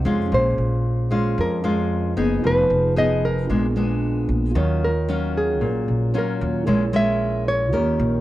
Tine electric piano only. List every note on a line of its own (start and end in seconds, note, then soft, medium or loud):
0.00 0.26 D#4 soft
0.00 0.27 F#4 soft
0.00 0.28 A4 soft
0.00 0.29 C5 soft
0.28 2.38 C#4 soft
0.28 2.39 F4 soft
0.32 2.40 G#4 soft
0.32 2.41 C5 soft
2.40 3.46 D#4 soft
2.40 3.46 F4 soft
2.40 3.47 G#4 soft
2.46 3.48 B4 medium
3.45 4.51 D4 soft
3.45 4.50 F4 soft
3.45 4.53 G#4 soft
3.51 4.54 B3 medium
4.52 6.09 F4 medium
4.56 6.11 A#4 medium
4.56 6.12 C#5 medium
6.12 6.66 F4 soft
6.12 6.66 A#4 soft
6.12 6.67 C#5 soft
6.63 7.69 E4 soft
6.63 7.70 G#4 soft
6.63 7.71 A#4 soft
6.69 7.72 C#5 medium
7.69 8.21 F4 soft
7.69 8.21 G4 soft
7.73 8.21 A#4 soft
7.73 8.21 C#5 medium